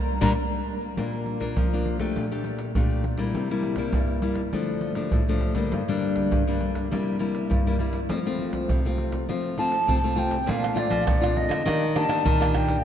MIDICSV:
0, 0, Header, 1, 7, 480
1, 0, Start_track
1, 0, Key_signature, -2, "major"
1, 0, Tempo, 594059
1, 782, Time_signature, 4, 2, 24, 8
1, 10375, End_track
2, 0, Start_track
2, 0, Title_t, "Flute"
2, 0, Program_c, 0, 73
2, 178, Note_on_c, 0, 82, 91
2, 257, Note_off_c, 0, 82, 0
2, 7747, Note_on_c, 0, 81, 97
2, 8231, Note_on_c, 0, 79, 80
2, 8243, Note_off_c, 0, 81, 0
2, 8481, Note_on_c, 0, 77, 87
2, 8493, Note_off_c, 0, 79, 0
2, 8716, Note_on_c, 0, 74, 81
2, 8728, Note_off_c, 0, 77, 0
2, 9189, Note_on_c, 0, 75, 79
2, 9201, Note_off_c, 0, 74, 0
2, 9663, Note_off_c, 0, 75, 0
2, 9668, Note_on_c, 0, 81, 103
2, 10113, Note_off_c, 0, 81, 0
2, 10151, Note_on_c, 0, 79, 83
2, 10370, Note_off_c, 0, 79, 0
2, 10375, End_track
3, 0, Start_track
3, 0, Title_t, "Nylon-string guitar"
3, 0, Program_c, 1, 24
3, 169, Note_on_c, 1, 55, 99
3, 173, Note_on_c, 1, 58, 92
3, 173, Note_on_c, 1, 62, 93
3, 252, Note_off_c, 1, 62, 0
3, 253, Note_off_c, 1, 55, 0
3, 253, Note_off_c, 1, 58, 0
3, 787, Note_on_c, 1, 46, 60
3, 787, Note_on_c, 1, 58, 44
3, 791, Note_on_c, 1, 62, 47
3, 795, Note_on_c, 1, 65, 53
3, 1105, Note_off_c, 1, 58, 0
3, 1107, Note_off_c, 1, 62, 0
3, 1109, Note_off_c, 1, 65, 0
3, 1132, Note_on_c, 1, 58, 50
3, 1137, Note_on_c, 1, 62, 49
3, 1139, Note_on_c, 1, 65, 53
3, 1240, Note_off_c, 1, 46, 0
3, 1268, Note_on_c, 1, 53, 66
3, 1338, Note_off_c, 1, 58, 0
3, 1340, Note_off_c, 1, 62, 0
3, 1341, Note_off_c, 1, 65, 0
3, 1398, Note_on_c, 1, 58, 46
3, 1402, Note_on_c, 1, 62, 43
3, 1406, Note_on_c, 1, 65, 51
3, 1591, Note_off_c, 1, 58, 0
3, 1593, Note_off_c, 1, 62, 0
3, 1594, Note_off_c, 1, 65, 0
3, 1612, Note_on_c, 1, 57, 55
3, 1617, Note_on_c, 1, 62, 54
3, 1619, Note_on_c, 1, 67, 56
3, 1720, Note_off_c, 1, 53, 0
3, 1742, Note_on_c, 1, 46, 52
3, 1818, Note_off_c, 1, 57, 0
3, 1819, Note_off_c, 1, 62, 0
3, 1821, Note_off_c, 1, 67, 0
3, 1870, Note_on_c, 1, 57, 43
3, 1872, Note_on_c, 1, 62, 40
3, 1874, Note_on_c, 1, 67, 50
3, 2187, Note_off_c, 1, 57, 0
3, 2187, Note_off_c, 1, 62, 0
3, 2188, Note_off_c, 1, 67, 0
3, 2197, Note_off_c, 1, 46, 0
3, 2227, Note_on_c, 1, 57, 49
3, 2231, Note_on_c, 1, 46, 54
3, 2231, Note_on_c, 1, 62, 43
3, 2237, Note_on_c, 1, 67, 49
3, 2449, Note_off_c, 1, 57, 0
3, 2450, Note_off_c, 1, 62, 0
3, 2453, Note_off_c, 1, 67, 0
3, 2569, Note_on_c, 1, 55, 50
3, 2573, Note_on_c, 1, 58, 46
3, 2577, Note_on_c, 1, 64, 54
3, 2682, Note_off_c, 1, 46, 0
3, 2708, Note_on_c, 1, 48, 60
3, 2825, Note_off_c, 1, 55, 0
3, 2827, Note_off_c, 1, 58, 0
3, 2829, Note_off_c, 1, 64, 0
3, 2835, Note_on_c, 1, 55, 55
3, 2838, Note_on_c, 1, 58, 52
3, 2839, Note_on_c, 1, 64, 60
3, 3029, Note_off_c, 1, 55, 0
3, 3030, Note_off_c, 1, 58, 0
3, 3031, Note_off_c, 1, 64, 0
3, 3049, Note_on_c, 1, 55, 51
3, 3054, Note_on_c, 1, 58, 59
3, 3055, Note_on_c, 1, 64, 56
3, 3160, Note_off_c, 1, 48, 0
3, 3182, Note_on_c, 1, 43, 67
3, 3376, Note_off_c, 1, 55, 0
3, 3378, Note_off_c, 1, 58, 0
3, 3379, Note_off_c, 1, 64, 0
3, 3410, Note_on_c, 1, 55, 51
3, 3414, Note_on_c, 1, 58, 51
3, 3420, Note_on_c, 1, 64, 52
3, 3556, Note_off_c, 1, 55, 0
3, 3559, Note_off_c, 1, 58, 0
3, 3560, Note_off_c, 1, 64, 0
3, 3637, Note_off_c, 1, 43, 0
3, 3659, Note_on_c, 1, 50, 56
3, 3664, Note_on_c, 1, 53, 43
3, 3664, Note_on_c, 1, 57, 50
3, 3668, Note_on_c, 1, 62, 45
3, 3982, Note_off_c, 1, 53, 0
3, 3984, Note_off_c, 1, 57, 0
3, 3986, Note_off_c, 1, 62, 0
3, 4007, Note_on_c, 1, 53, 46
3, 4009, Note_on_c, 1, 57, 47
3, 4015, Note_on_c, 1, 62, 50
3, 4116, Note_off_c, 1, 50, 0
3, 4141, Note_on_c, 1, 45, 56
3, 4216, Note_off_c, 1, 53, 0
3, 4216, Note_off_c, 1, 57, 0
3, 4219, Note_off_c, 1, 62, 0
3, 4273, Note_on_c, 1, 53, 49
3, 4274, Note_on_c, 1, 57, 52
3, 4278, Note_on_c, 1, 62, 52
3, 4468, Note_off_c, 1, 53, 0
3, 4468, Note_off_c, 1, 57, 0
3, 4471, Note_off_c, 1, 62, 0
3, 4482, Note_on_c, 1, 50, 57
3, 4488, Note_on_c, 1, 55, 49
3, 4493, Note_on_c, 1, 58, 48
3, 4494, Note_on_c, 1, 62, 54
3, 4597, Note_off_c, 1, 45, 0
3, 4620, Note_on_c, 1, 43, 57
3, 4693, Note_off_c, 1, 50, 0
3, 4696, Note_off_c, 1, 55, 0
3, 4698, Note_off_c, 1, 58, 0
3, 4699, Note_off_c, 1, 62, 0
3, 4753, Note_on_c, 1, 50, 51
3, 4756, Note_on_c, 1, 55, 58
3, 4760, Note_on_c, 1, 58, 53
3, 4761, Note_on_c, 1, 62, 68
3, 5076, Note_off_c, 1, 43, 0
3, 5101, Note_on_c, 1, 43, 67
3, 5189, Note_off_c, 1, 50, 0
3, 5189, Note_off_c, 1, 55, 0
3, 5192, Note_off_c, 1, 62, 0
3, 5193, Note_off_c, 1, 58, 0
3, 5230, Note_on_c, 1, 50, 47
3, 5234, Note_on_c, 1, 55, 43
3, 5238, Note_on_c, 1, 58, 50
3, 5239, Note_on_c, 1, 62, 50
3, 5548, Note_off_c, 1, 50, 0
3, 5550, Note_off_c, 1, 55, 0
3, 5551, Note_off_c, 1, 58, 0
3, 5552, Note_off_c, 1, 62, 0
3, 5557, Note_off_c, 1, 43, 0
3, 5585, Note_on_c, 1, 48, 59
3, 5587, Note_on_c, 1, 55, 46
3, 5590, Note_on_c, 1, 58, 47
3, 5594, Note_on_c, 1, 64, 47
3, 5786, Note_off_c, 1, 55, 0
3, 5788, Note_off_c, 1, 58, 0
3, 5788, Note_off_c, 1, 64, 0
3, 5811, Note_on_c, 1, 55, 43
3, 5814, Note_on_c, 1, 58, 48
3, 5818, Note_on_c, 1, 64, 55
3, 6040, Note_off_c, 1, 48, 0
3, 6058, Note_on_c, 1, 43, 56
3, 6138, Note_off_c, 1, 55, 0
3, 6139, Note_off_c, 1, 58, 0
3, 6142, Note_off_c, 1, 64, 0
3, 6193, Note_on_c, 1, 55, 49
3, 6198, Note_on_c, 1, 58, 54
3, 6198, Note_on_c, 1, 64, 56
3, 6269, Note_off_c, 1, 55, 0
3, 6271, Note_off_c, 1, 58, 0
3, 6272, Note_off_c, 1, 64, 0
3, 6299, Note_on_c, 1, 55, 49
3, 6302, Note_on_c, 1, 58, 42
3, 6307, Note_on_c, 1, 64, 49
3, 6456, Note_off_c, 1, 55, 0
3, 6456, Note_off_c, 1, 58, 0
3, 6459, Note_off_c, 1, 64, 0
3, 6516, Note_off_c, 1, 43, 0
3, 6536, Note_on_c, 1, 53, 57
3, 6541, Note_on_c, 1, 57, 52
3, 6543, Note_on_c, 1, 60, 44
3, 6547, Note_on_c, 1, 65, 53
3, 6613, Note_off_c, 1, 57, 0
3, 6615, Note_off_c, 1, 60, 0
3, 6616, Note_off_c, 1, 65, 0
3, 6673, Note_on_c, 1, 57, 53
3, 6678, Note_on_c, 1, 60, 58
3, 6681, Note_on_c, 1, 65, 58
3, 6996, Note_off_c, 1, 53, 0
3, 7028, Note_on_c, 1, 48, 67
3, 7110, Note_off_c, 1, 57, 0
3, 7111, Note_off_c, 1, 60, 0
3, 7113, Note_off_c, 1, 65, 0
3, 7153, Note_on_c, 1, 57, 41
3, 7159, Note_on_c, 1, 60, 53
3, 7160, Note_on_c, 1, 65, 47
3, 7470, Note_off_c, 1, 57, 0
3, 7471, Note_off_c, 1, 60, 0
3, 7473, Note_off_c, 1, 65, 0
3, 7482, Note_off_c, 1, 48, 0
3, 7503, Note_on_c, 1, 53, 57
3, 7507, Note_on_c, 1, 57, 42
3, 7509, Note_on_c, 1, 60, 44
3, 7509, Note_on_c, 1, 65, 50
3, 7706, Note_off_c, 1, 57, 0
3, 7706, Note_off_c, 1, 60, 0
3, 7707, Note_off_c, 1, 65, 0
3, 7739, Note_on_c, 1, 57, 48
3, 7743, Note_on_c, 1, 60, 46
3, 7745, Note_on_c, 1, 65, 53
3, 7882, Note_off_c, 1, 57, 0
3, 7884, Note_off_c, 1, 60, 0
3, 7884, Note_off_c, 1, 65, 0
3, 7959, Note_off_c, 1, 53, 0
3, 7978, Note_on_c, 1, 48, 53
3, 7984, Note_on_c, 1, 60, 50
3, 7986, Note_on_c, 1, 57, 42
3, 7987, Note_on_c, 1, 65, 46
3, 8054, Note_off_c, 1, 57, 0
3, 8056, Note_off_c, 1, 60, 0
3, 8056, Note_off_c, 1, 65, 0
3, 8107, Note_on_c, 1, 57, 51
3, 8111, Note_on_c, 1, 60, 52
3, 8115, Note_on_c, 1, 65, 60
3, 8186, Note_off_c, 1, 57, 0
3, 8188, Note_off_c, 1, 60, 0
3, 8190, Note_off_c, 1, 65, 0
3, 8203, Note_on_c, 1, 57, 51
3, 8207, Note_on_c, 1, 60, 48
3, 8210, Note_on_c, 1, 65, 51
3, 8368, Note_off_c, 1, 57, 0
3, 8370, Note_off_c, 1, 60, 0
3, 8370, Note_off_c, 1, 65, 0
3, 8437, Note_off_c, 1, 48, 0
3, 8453, Note_on_c, 1, 46, 52
3, 8457, Note_on_c, 1, 57, 54
3, 8459, Note_on_c, 1, 62, 48
3, 8463, Note_on_c, 1, 65, 53
3, 8660, Note_off_c, 1, 57, 0
3, 8663, Note_off_c, 1, 62, 0
3, 8664, Note_off_c, 1, 65, 0
3, 8683, Note_on_c, 1, 57, 59
3, 8686, Note_on_c, 1, 62, 53
3, 8692, Note_on_c, 1, 65, 56
3, 8914, Note_off_c, 1, 46, 0
3, 8918, Note_off_c, 1, 57, 0
3, 8920, Note_off_c, 1, 62, 0
3, 8921, Note_off_c, 1, 65, 0
3, 8933, Note_on_c, 1, 41, 61
3, 9055, Note_on_c, 1, 57, 48
3, 9062, Note_on_c, 1, 62, 49
3, 9062, Note_on_c, 1, 65, 58
3, 9380, Note_off_c, 1, 57, 0
3, 9383, Note_off_c, 1, 65, 0
3, 9384, Note_off_c, 1, 62, 0
3, 9394, Note_off_c, 1, 41, 0
3, 9419, Note_on_c, 1, 51, 48
3, 9422, Note_on_c, 1, 58, 43
3, 9423, Note_on_c, 1, 62, 51
3, 9424, Note_on_c, 1, 67, 55
3, 9562, Note_off_c, 1, 62, 0
3, 9563, Note_off_c, 1, 58, 0
3, 9564, Note_off_c, 1, 67, 0
3, 9655, Note_on_c, 1, 58, 55
3, 9657, Note_on_c, 1, 62, 52
3, 9661, Note_on_c, 1, 67, 53
3, 9877, Note_off_c, 1, 51, 0
3, 9884, Note_off_c, 1, 58, 0
3, 9884, Note_off_c, 1, 62, 0
3, 9885, Note_off_c, 1, 67, 0
3, 9889, Note_on_c, 1, 46, 52
3, 10018, Note_on_c, 1, 58, 59
3, 10024, Note_on_c, 1, 62, 59
3, 10025, Note_on_c, 1, 67, 61
3, 10342, Note_off_c, 1, 58, 0
3, 10344, Note_off_c, 1, 67, 0
3, 10345, Note_off_c, 1, 62, 0
3, 10351, Note_off_c, 1, 46, 0
3, 10375, End_track
4, 0, Start_track
4, 0, Title_t, "Nylon-string guitar"
4, 0, Program_c, 2, 24
4, 171, Note_on_c, 2, 46, 86
4, 266, Note_off_c, 2, 46, 0
4, 8463, Note_on_c, 2, 46, 84
4, 8769, Note_off_c, 2, 46, 0
4, 8808, Note_on_c, 2, 53, 73
4, 8916, Note_off_c, 2, 53, 0
4, 8944, Note_on_c, 2, 46, 81
4, 9249, Note_off_c, 2, 46, 0
4, 9282, Note_on_c, 2, 50, 72
4, 9393, Note_off_c, 2, 50, 0
4, 9418, Note_on_c, 2, 51, 85
4, 9726, Note_off_c, 2, 51, 0
4, 9765, Note_on_c, 2, 51, 74
4, 9875, Note_off_c, 2, 51, 0
4, 9902, Note_on_c, 2, 51, 91
4, 10310, Note_off_c, 2, 51, 0
4, 10375, End_track
5, 0, Start_track
5, 0, Title_t, "Pandeiro"
5, 786, Note_on_c, 9, 54, 72
5, 867, Note_off_c, 9, 54, 0
5, 914, Note_on_c, 9, 54, 28
5, 994, Note_off_c, 9, 54, 0
5, 1017, Note_on_c, 9, 54, 40
5, 1097, Note_off_c, 9, 54, 0
5, 1138, Note_on_c, 9, 54, 53
5, 1219, Note_off_c, 9, 54, 0
5, 1263, Note_on_c, 9, 54, 69
5, 1344, Note_off_c, 9, 54, 0
5, 1386, Note_on_c, 9, 54, 24
5, 1467, Note_off_c, 9, 54, 0
5, 1500, Note_on_c, 9, 54, 46
5, 1581, Note_off_c, 9, 54, 0
5, 1612, Note_on_c, 9, 54, 50
5, 1693, Note_off_c, 9, 54, 0
5, 1747, Note_on_c, 9, 54, 60
5, 1828, Note_off_c, 9, 54, 0
5, 1873, Note_on_c, 9, 54, 25
5, 1953, Note_off_c, 9, 54, 0
5, 1972, Note_on_c, 9, 54, 47
5, 2052, Note_off_c, 9, 54, 0
5, 2089, Note_on_c, 9, 54, 54
5, 2170, Note_off_c, 9, 54, 0
5, 2223, Note_on_c, 9, 54, 70
5, 2304, Note_off_c, 9, 54, 0
5, 2350, Note_on_c, 9, 54, 26
5, 2431, Note_off_c, 9, 54, 0
5, 2456, Note_on_c, 9, 54, 49
5, 2537, Note_off_c, 9, 54, 0
5, 2566, Note_on_c, 9, 54, 55
5, 2647, Note_off_c, 9, 54, 0
5, 2703, Note_on_c, 9, 54, 66
5, 2783, Note_off_c, 9, 54, 0
5, 2826, Note_on_c, 9, 54, 25
5, 2906, Note_off_c, 9, 54, 0
5, 2931, Note_on_c, 9, 54, 45
5, 3012, Note_off_c, 9, 54, 0
5, 3036, Note_on_c, 9, 54, 62
5, 3117, Note_off_c, 9, 54, 0
5, 3172, Note_on_c, 9, 54, 71
5, 3253, Note_off_c, 9, 54, 0
5, 3303, Note_on_c, 9, 54, 25
5, 3384, Note_off_c, 9, 54, 0
5, 3410, Note_on_c, 9, 54, 49
5, 3491, Note_off_c, 9, 54, 0
5, 3518, Note_on_c, 9, 54, 54
5, 3599, Note_off_c, 9, 54, 0
5, 3658, Note_on_c, 9, 54, 64
5, 3739, Note_off_c, 9, 54, 0
5, 3780, Note_on_c, 9, 54, 26
5, 3861, Note_off_c, 9, 54, 0
5, 3886, Note_on_c, 9, 54, 49
5, 3967, Note_off_c, 9, 54, 0
5, 4002, Note_on_c, 9, 54, 53
5, 4082, Note_off_c, 9, 54, 0
5, 4134, Note_on_c, 9, 54, 66
5, 4214, Note_off_c, 9, 54, 0
5, 4268, Note_on_c, 9, 54, 27
5, 4348, Note_off_c, 9, 54, 0
5, 4369, Note_on_c, 9, 54, 49
5, 4449, Note_off_c, 9, 54, 0
5, 4482, Note_on_c, 9, 54, 55
5, 4563, Note_off_c, 9, 54, 0
5, 4619, Note_on_c, 9, 54, 68
5, 4700, Note_off_c, 9, 54, 0
5, 4752, Note_on_c, 9, 54, 27
5, 4832, Note_off_c, 9, 54, 0
5, 4856, Note_on_c, 9, 54, 42
5, 4937, Note_off_c, 9, 54, 0
5, 4974, Note_on_c, 9, 54, 57
5, 5055, Note_off_c, 9, 54, 0
5, 5105, Note_on_c, 9, 54, 70
5, 5186, Note_off_c, 9, 54, 0
5, 5235, Note_on_c, 9, 54, 26
5, 5315, Note_off_c, 9, 54, 0
5, 5340, Note_on_c, 9, 54, 48
5, 5420, Note_off_c, 9, 54, 0
5, 5456, Note_on_c, 9, 54, 60
5, 5537, Note_off_c, 9, 54, 0
5, 5594, Note_on_c, 9, 54, 73
5, 5675, Note_off_c, 9, 54, 0
5, 5720, Note_on_c, 9, 54, 26
5, 5801, Note_off_c, 9, 54, 0
5, 5819, Note_on_c, 9, 54, 49
5, 5900, Note_off_c, 9, 54, 0
5, 5936, Note_on_c, 9, 54, 52
5, 6017, Note_off_c, 9, 54, 0
5, 6067, Note_on_c, 9, 54, 65
5, 6148, Note_off_c, 9, 54, 0
5, 6192, Note_on_c, 9, 54, 27
5, 6273, Note_off_c, 9, 54, 0
5, 6295, Note_on_c, 9, 54, 48
5, 6376, Note_off_c, 9, 54, 0
5, 6406, Note_on_c, 9, 54, 58
5, 6487, Note_off_c, 9, 54, 0
5, 6541, Note_on_c, 9, 54, 76
5, 6622, Note_off_c, 9, 54, 0
5, 6671, Note_on_c, 9, 54, 25
5, 6752, Note_off_c, 9, 54, 0
5, 6780, Note_on_c, 9, 54, 39
5, 6861, Note_off_c, 9, 54, 0
5, 6891, Note_on_c, 9, 54, 61
5, 6972, Note_off_c, 9, 54, 0
5, 7023, Note_on_c, 9, 54, 68
5, 7104, Note_off_c, 9, 54, 0
5, 7150, Note_on_c, 9, 54, 28
5, 7230, Note_off_c, 9, 54, 0
5, 7256, Note_on_c, 9, 54, 48
5, 7337, Note_off_c, 9, 54, 0
5, 7372, Note_on_c, 9, 54, 59
5, 7453, Note_off_c, 9, 54, 0
5, 7506, Note_on_c, 9, 54, 63
5, 7587, Note_off_c, 9, 54, 0
5, 7637, Note_on_c, 9, 54, 28
5, 7718, Note_off_c, 9, 54, 0
5, 7737, Note_on_c, 9, 54, 48
5, 7818, Note_off_c, 9, 54, 0
5, 7853, Note_on_c, 9, 54, 53
5, 7934, Note_off_c, 9, 54, 0
5, 7988, Note_on_c, 9, 54, 68
5, 8069, Note_off_c, 9, 54, 0
5, 8115, Note_on_c, 9, 54, 30
5, 8196, Note_off_c, 9, 54, 0
5, 8223, Note_on_c, 9, 54, 47
5, 8304, Note_off_c, 9, 54, 0
5, 8333, Note_on_c, 9, 54, 64
5, 8413, Note_off_c, 9, 54, 0
5, 8476, Note_on_c, 9, 54, 78
5, 8556, Note_off_c, 9, 54, 0
5, 8598, Note_on_c, 9, 54, 29
5, 8679, Note_off_c, 9, 54, 0
5, 8702, Note_on_c, 9, 54, 51
5, 8782, Note_off_c, 9, 54, 0
5, 8815, Note_on_c, 9, 54, 68
5, 8896, Note_off_c, 9, 54, 0
5, 8947, Note_on_c, 9, 54, 75
5, 9028, Note_off_c, 9, 54, 0
5, 9079, Note_on_c, 9, 54, 29
5, 9160, Note_off_c, 9, 54, 0
5, 9185, Note_on_c, 9, 54, 54
5, 9266, Note_off_c, 9, 54, 0
5, 9301, Note_on_c, 9, 54, 68
5, 9382, Note_off_c, 9, 54, 0
5, 9434, Note_on_c, 9, 54, 73
5, 9515, Note_off_c, 9, 54, 0
5, 9556, Note_on_c, 9, 54, 31
5, 9637, Note_off_c, 9, 54, 0
5, 9664, Note_on_c, 9, 54, 54
5, 9745, Note_off_c, 9, 54, 0
5, 9773, Note_on_c, 9, 54, 59
5, 9853, Note_off_c, 9, 54, 0
5, 9903, Note_on_c, 9, 54, 72
5, 9984, Note_off_c, 9, 54, 0
5, 10035, Note_on_c, 9, 54, 32
5, 10116, Note_off_c, 9, 54, 0
5, 10136, Note_on_c, 9, 54, 54
5, 10217, Note_off_c, 9, 54, 0
5, 10248, Note_on_c, 9, 54, 62
5, 10329, Note_off_c, 9, 54, 0
5, 10375, End_track
6, 0, Start_track
6, 0, Title_t, "Tamborim"
6, 8598, Note_on_c, 9, 60, 66
6, 8679, Note_off_c, 9, 60, 0
6, 8702, Note_on_c, 9, 60, 61
6, 8782, Note_off_c, 9, 60, 0
6, 8947, Note_on_c, 9, 60, 77
6, 9028, Note_off_c, 9, 60, 0
6, 9079, Note_on_c, 9, 60, 77
6, 9160, Note_off_c, 9, 60, 0
6, 9301, Note_on_c, 9, 60, 76
6, 9382, Note_off_c, 9, 60, 0
6, 9434, Note_on_c, 9, 60, 80
6, 9515, Note_off_c, 9, 60, 0
6, 9664, Note_on_c, 9, 60, 71
6, 9745, Note_off_c, 9, 60, 0
6, 9773, Note_on_c, 9, 60, 75
6, 9853, Note_off_c, 9, 60, 0
6, 10035, Note_on_c, 9, 60, 82
6, 10116, Note_off_c, 9, 60, 0
6, 10136, Note_on_c, 9, 60, 76
6, 10217, Note_off_c, 9, 60, 0
6, 10375, End_track
7, 0, Start_track
7, 0, Title_t, "Drums"
7, 177, Note_on_c, 9, 87, 91
7, 258, Note_off_c, 9, 87, 0
7, 786, Note_on_c, 9, 87, 47
7, 867, Note_off_c, 9, 87, 0
7, 1138, Note_on_c, 9, 87, 29
7, 1219, Note_off_c, 9, 87, 0
7, 1263, Note_on_c, 9, 87, 78
7, 1344, Note_off_c, 9, 87, 0
7, 1612, Note_on_c, 9, 87, 26
7, 1693, Note_off_c, 9, 87, 0
7, 1747, Note_on_c, 9, 87, 47
7, 1828, Note_off_c, 9, 87, 0
7, 2223, Note_on_c, 9, 87, 86
7, 2304, Note_off_c, 9, 87, 0
7, 2350, Note_on_c, 9, 87, 27
7, 2431, Note_off_c, 9, 87, 0
7, 2566, Note_on_c, 9, 87, 28
7, 2647, Note_off_c, 9, 87, 0
7, 2703, Note_on_c, 9, 87, 50
7, 2783, Note_off_c, 9, 87, 0
7, 3036, Note_on_c, 9, 87, 30
7, 3117, Note_off_c, 9, 87, 0
7, 3172, Note_on_c, 9, 87, 75
7, 3253, Note_off_c, 9, 87, 0
7, 3518, Note_on_c, 9, 87, 26
7, 3599, Note_off_c, 9, 87, 0
7, 3658, Note_on_c, 9, 87, 52
7, 3739, Note_off_c, 9, 87, 0
7, 4134, Note_on_c, 9, 87, 84
7, 4214, Note_off_c, 9, 87, 0
7, 4268, Note_on_c, 9, 87, 28
7, 4348, Note_off_c, 9, 87, 0
7, 4369, Note_on_c, 9, 87, 27
7, 4449, Note_off_c, 9, 87, 0
7, 4482, Note_on_c, 9, 87, 29
7, 4563, Note_off_c, 9, 87, 0
7, 4619, Note_on_c, 9, 87, 52
7, 4700, Note_off_c, 9, 87, 0
7, 4974, Note_on_c, 9, 87, 27
7, 5055, Note_off_c, 9, 87, 0
7, 5105, Note_on_c, 9, 87, 81
7, 5186, Note_off_c, 9, 87, 0
7, 5456, Note_on_c, 9, 87, 25
7, 5537, Note_off_c, 9, 87, 0
7, 5594, Note_on_c, 9, 87, 44
7, 5675, Note_off_c, 9, 87, 0
7, 6067, Note_on_c, 9, 87, 85
7, 6148, Note_off_c, 9, 87, 0
7, 6192, Note_on_c, 9, 87, 26
7, 6273, Note_off_c, 9, 87, 0
7, 6406, Note_on_c, 9, 87, 29
7, 6487, Note_off_c, 9, 87, 0
7, 6541, Note_on_c, 9, 87, 46
7, 6622, Note_off_c, 9, 87, 0
7, 6891, Note_on_c, 9, 87, 31
7, 6972, Note_off_c, 9, 87, 0
7, 7023, Note_on_c, 9, 87, 86
7, 7104, Note_off_c, 9, 87, 0
7, 7372, Note_on_c, 9, 87, 28
7, 7453, Note_off_c, 9, 87, 0
7, 7506, Note_on_c, 9, 87, 46
7, 7587, Note_off_c, 9, 87, 0
7, 7988, Note_on_c, 9, 87, 80
7, 8069, Note_off_c, 9, 87, 0
7, 8115, Note_on_c, 9, 87, 28
7, 8196, Note_off_c, 9, 87, 0
7, 8333, Note_on_c, 9, 87, 31
7, 8413, Note_off_c, 9, 87, 0
7, 8476, Note_on_c, 9, 82, 74
7, 8476, Note_on_c, 9, 87, 57
7, 8556, Note_off_c, 9, 82, 0
7, 8556, Note_off_c, 9, 87, 0
7, 8598, Note_on_c, 9, 82, 32
7, 8679, Note_off_c, 9, 82, 0
7, 8815, Note_on_c, 9, 82, 76
7, 8815, Note_on_c, 9, 87, 33
7, 8896, Note_off_c, 9, 82, 0
7, 8896, Note_off_c, 9, 87, 0
7, 8947, Note_on_c, 9, 82, 76
7, 8947, Note_on_c, 9, 87, 88
7, 9028, Note_off_c, 9, 82, 0
7, 9028, Note_off_c, 9, 87, 0
7, 9079, Note_on_c, 9, 82, 31
7, 9160, Note_off_c, 9, 82, 0
7, 9301, Note_on_c, 9, 82, 71
7, 9301, Note_on_c, 9, 87, 30
7, 9382, Note_off_c, 9, 82, 0
7, 9382, Note_off_c, 9, 87, 0
7, 9434, Note_on_c, 9, 82, 78
7, 9434, Note_on_c, 9, 87, 52
7, 9515, Note_off_c, 9, 82, 0
7, 9515, Note_off_c, 9, 87, 0
7, 9556, Note_on_c, 9, 82, 29
7, 9637, Note_off_c, 9, 82, 0
7, 9773, Note_on_c, 9, 82, 71
7, 9853, Note_off_c, 9, 82, 0
7, 9903, Note_on_c, 9, 82, 72
7, 9903, Note_on_c, 9, 87, 87
7, 9984, Note_off_c, 9, 82, 0
7, 9984, Note_off_c, 9, 87, 0
7, 10035, Note_on_c, 9, 82, 30
7, 10035, Note_on_c, 9, 87, 30
7, 10116, Note_off_c, 9, 82, 0
7, 10116, Note_off_c, 9, 87, 0
7, 10136, Note_on_c, 9, 87, 29
7, 10217, Note_off_c, 9, 87, 0
7, 10248, Note_on_c, 9, 82, 82
7, 10248, Note_on_c, 9, 87, 34
7, 10329, Note_off_c, 9, 82, 0
7, 10329, Note_off_c, 9, 87, 0
7, 10375, End_track
0, 0, End_of_file